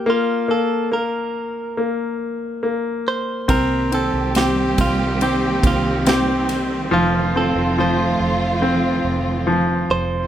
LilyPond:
<<
  \new Staff \with { instrumentName = "Clean electric guitar" } { \time 4/4 \key c \dorian \tempo 4 = 70 f'8 a'8 bes'4. r4 c''8 | bes'8 a'8 g'8 f'8 g'8 f'8 g'4 | f'8 a'8 c''4. r4 c''8 | }
  \new Staff \with { instrumentName = "Grand piano" } { \time 4/4 \key c \dorian bes8 bes8 bes4 bes4 bes4 | c'8 c'8 c'4 c'4 c'4 | f8 c'8 f4 c'4 f4 | }
  \new Staff \with { instrumentName = "String section" } { \time 4/4 \key c \dorian << { r1 | <g bes g'>1 | <f a f'>1 | } \\ { r1 | <ees c'>1~ | <ees c'>1 | } >> }
  \new Staff \with { instrumentName = "Fingered electric bass" } { \clef bass \time 4/4 \key c \dorian r1 | c,8. c,8. c,4 c,4. | f,,8. f,,8. f,,4 f,,4 f,,8 | }
  \new DrumStaff \with { instrumentName = "Drums" } \drummode { \time 4/4 r4 r4 r4 r4 | <bd cymr>8 cymr8 <cymr sn>8 <bd cymr>8 cymr8 <bd cymr>8 <cymr sn>8 <cymr sn>8 | r4 r4 r4 r4 | }
>>